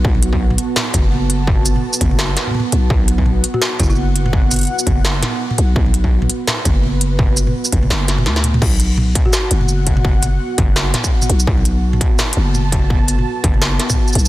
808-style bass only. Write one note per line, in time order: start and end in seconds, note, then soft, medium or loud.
0.05 0.57 B1 loud
0.94 1.82 F#1 medium
2.01 2.36 F#1 medium
2.73 2.89 B1 medium
2.90 3.43 B1 loud
3.80 4.68 F#1 loud
4.87 5.21 F#1 medium
5.58 5.75 B1 medium
5.76 6.29 B1 loud
6.65 7.54 F#1 loud
7.73 7.90 F#1 medium
7.90 8.28 F#1 loud
8.26 8.61 D2 medium
8.62 9.14 B1 loud
9.51 10.39 F#1 loud
10.58 10.93 F#1 medium
11.29 11.46 B1 medium
11.47 12.00 B1 loud
12.37 13.25 F#1 medium
13.44 13.79 F#1 medium
14.15 14.28 B1 medium